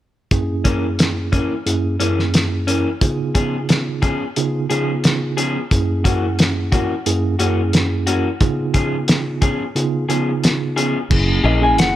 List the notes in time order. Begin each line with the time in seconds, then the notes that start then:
0.31 F#2 A#3 C#4 E4 G#4, kick, closed hi-hat
0.64 E3 A#3 C#4, kick, closed hi-hat
0.99 snare, closed hi-hat
1.32 E3 A#3 C#4, kick, closed hi-hat
1.66 F#2 A#3 C#4 E4 G#4, closed hi-hat
2.00 F#2 E3 A#3 C#4 E4 G#4, closed hi-hat
2.19 snare
2.34 snare, closed hi-hat
2.67 E3 A#3 C#4, closed hi-hat
3.01 C#3 B3 D#4 F4 G#4, kick, closed hi-hat
3.35 F3 B3 C#4 G#4, kick, closed hi-hat
3.69 snare, closed hi-hat
4.02 F3 B3 C#4 G#4, kick, closed hi-hat
4.36 C#3 B3 D#4 F4 G#4, closed hi-hat
4.70 C#3 F3 B3 C#4 D#4 F4 G#4, closed hi-hat
5.04 snare, closed hi-hat
5.37 F3 B3 C#4 G#4, closed hi-hat
5.71 F#2 A#3 C#4 E4 G#4, kick, closed hi-hat
6.04 E3 A#3 C#4 F#4, kick, closed hi-hat
6.39 snare, closed hi-hat
6.72 E3 A#3 C#4 F#4, kick, closed hi-hat
7.06 F#2 A#3 C#4 E4 G#4, closed hi-hat
7.39 F#2 E3 A#3 C#4 E4 F#4 G#4, closed hi-hat
7.73 snare, closed hi-hat
8.07 E3 A#3 C#4 F#4, closed hi-hat
8.41 C#3 B3 D#4 F4 G#4, kick, closed hi-hat
8.74 F3 B3 C#4 G#4, kick, closed hi-hat
9.08 snare, closed hi-hat
9.42 F3 B3 C#4 G#4, kick, closed hi-hat
9.75 C#3 B3 D#4 F4 G#4, closed hi-hat
10.09 C#3 F3 B3 C#4 D#4 F4 G#4, closed hi-hat
10.44 snare, closed hi-hat
10.76 F3 B3 C#4 G#4, closed hi-hat
11.10 F#1 A#3 C#4 E4 G#4, kick, crash
11.44 A#1 E3 A#3 C#4 G#4 D#5
11.62 A#3 C#4 E4 G#4 G#5
11.78 F#1 F#5, snare, closed hi-hat